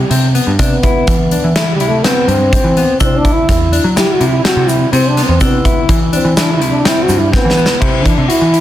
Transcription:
Already playing: french horn G3
0.10 picked electric bass C3, clean electric guitar C4, closed hi-hat
0.35 clean electric guitar B3, closed hi-hat
0.47 picked electric bass G2
0.59 picked electric bass C3, french horn B3, clean electric guitar D4, kick, closed hi-hat
0.83 clean electric guitar E4, kick, closed hi-hat
1.07 picked electric bass E3, kick, closed hi-hat
1.31 clean electric guitar D4, closed hi-hat
1.44 picked electric bass E3
1.56 french horn A3, clean electric guitar E4, snare, closed hi-hat
1.72 french horn G3
1.80 picked electric bass C3, clean electric guitar E4, closed hi-hat
1.88 french horn A3
2.04 french horn B3, clean electric guitar C4, snare, closed hi-hat
2.28 picked electric bass G2, french horn C4, closed hi-hat
2.53 clean electric guitar C4, kick, closed hi-hat
2.64 picked electric bass E3
2.77 clean electric guitar B3, closed hi-hat
3.00 picked electric bass C3, french horn C4, clean electric guitar D4, vibraphone E4, kick, closed hi-hat, shaker
3.17 french horn D4
3.25 clean electric guitar E4, kick, closed hi-hat
3.33 french horn E4
3.49 picked electric bass E2, kick, snare, closed hi-hat
3.72 clean electric guitar D4, closed hi-hat
3.84 picked electric bass F#3
3.96 clean electric guitar E4, french horn G4, snare, closed hi-hat, shaker
4.13 french horn F#4
4.20 picked electric bass C3, clean electric guitar E4, closed hi-hat
4.29 french horn E4
4.44 clean electric guitar C4, french horn F#4, snare, closed hi-hat
4.56 picked electric bass C3
4.69 french horn E4, closed hi-hat, shaker
4.93 picked electric bass C3, french horn C4, clean electric guitar C4, vibraphone C4, closed hi-hat
5.09 french horn D4
5.17 clean electric guitar B3, snare, closed hi-hat
5.25 picked electric bass E2, french horn C4
5.41 picked electric bass C3, french horn B3, clean electric guitar D4, vibraphone E4, kick, closed hi-hat, shaker
5.65 clean electric guitar E4, kick, closed hi-hat
5.89 picked electric bass E3, kick, closed hi-hat
6.13 french horn C4, clean electric guitar D4, closed hi-hat
6.25 picked electric bass E3
6.37 french horn D4, clean electric guitar E4, snare, closed hi-hat, shaker
6.54 french horn E4
6.61 picked electric bass C3, clean electric guitar E4, closed hi-hat
6.71 french horn D4
6.85 clean electric guitar C4, french horn E4, snare, closed hi-hat
7.03 french horn F#4
7.09 picked electric bass G2, closed hi-hat, shaker
7.18 french horn E4
7.32 french horn B3, clean electric guitar C4, kick, snare
7.45 picked electric bass E3
7.50 snare
7.57 clean electric guitar B3, shaker
7.66 snare
7.81 picked electric bass C3, french horn C4, clean electric guitar E4, kick, crash
8.05 picked electric bass E3, french horn D4, kick, closed hi-hat
8.18 picked electric bass C3
8.28 french horn E4, clean electric guitar F#4, closed hi-hat
8.41 picked electric bass E3
8.53 clean electric guitar E4, closed hi-hat

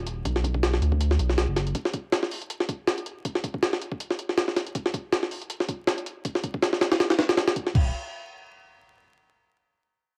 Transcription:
Already playing: sub bass D#1
0.07 closed hi-hat
0.25 sub bass B1, kick, closed hi-hat
0.36 snare
0.44 kick, closed hi-hat
0.54 kick
0.63 snare, closed hi-hat
0.73 snare
0.81 sub bass D2, closed hi-hat
0.92 kick
1.01 closed hi-hat
1.11 snare
1.19 sub bass B1, closed hi-hat
1.29 snare
1.38 snare, closed hi-hat
1.48 sub bass F#1
1.56 snare, closed hi-hat
1.67 closed hi-hat
1.75 kick, closed hi-hat
1.85 snare
1.94 kick, closed hi-hat
2.12 snare, closed hi-hat
2.23 snare
2.31 open hi-hat
2.42 closed hi-hat
2.50 closed hi-hat
2.60 snare
2.69 kick, closed hi-hat
2.87 snare, closed hi-hat
2.98 closed hi-hat
3.06 closed hi-hat
3.25 kick, closed hi-hat
3.35 snare
3.44 kick, closed hi-hat
3.54 kick
3.63 snare, closed hi-hat
3.73 snare
3.82 closed hi-hat
3.92 kick
4.00 closed hi-hat
4.11 snare
4.19 closed hi-hat
4.29 snare
4.38 snare, closed hi-hat
4.48 snare
4.56 snare, closed hi-hat
4.67 closed hi-hat
4.75 kick, closed hi-hat
4.86 snare
4.94 kick, closed hi-hat
5.12 snare, closed hi-hat
5.23 snare
5.31 open hi-hat
5.42 closed hi-hat
5.50 closed hi-hat
5.60 snare
5.69 kick, closed hi-hat
5.87 snare, closed hi-hat
5.98 closed hi-hat
6.06 closed hi-hat
6.25 kick, closed hi-hat
6.35 snare
6.43 kick, closed hi-hat
6.54 kick
6.62 snare, closed hi-hat
6.73 snare
6.81 snare, closed hi-hat
6.92 snare, closed hi-hat
7.00 snare, closed hi-hat
7.10 snare, closed hi-hat
7.19 snare, closed hi-hat
7.29 snare, closed hi-hat
7.37 snare, closed hi-hat
7.48 snare, closed hi-hat
7.56 kick, closed hi-hat
7.67 snare
7.75 sub bass D#1, kick, crash

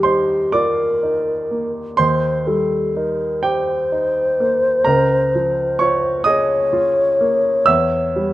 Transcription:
Already playing: grand piano D#2 G3 A#4 A#5, alto flute G4
0.03 grand piano D#4 C5 C6
0.52 grand piano F4 D5 D6, alto flute A#4
1.03 grand piano D#4
1.51 grand piano A#3
1.97 grand piano D#2 C5 C6, alto flute C5
2.47 grand piano G3, alto flute A4
2.96 grand piano D#4, alto flute A#4
3.43 grand piano G4 G5, alto flute C5
3.92 grand piano D#4
4.40 grand piano A#3
4.84 grand piano C#2 A#4 A#5
5.35 grand piano F3
5.79 grand piano F4 C#5 C#6
6.24 grand piano G#4 D#5 D#6, alto flute C#5
6.73 grand piano F4
7.21 grand piano A#3
7.66 grand piano E2 E5 E6
8.16 grand piano G3

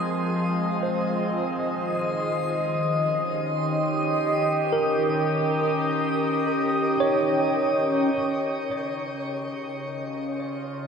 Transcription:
Already playing: ambient pad F3 G#3 C4 D#5, tine electric piano A#4, synth texture C6
0.83 tine electric piano C5
1.38 ambient pad D#3
2.52 ambient pad C#4
2.83 ambient pad G4
4.73 tine electric piano A#4
7.00 tine electric piano C#5
8.15 ambient pad C#3
9.68 ambient pad F4

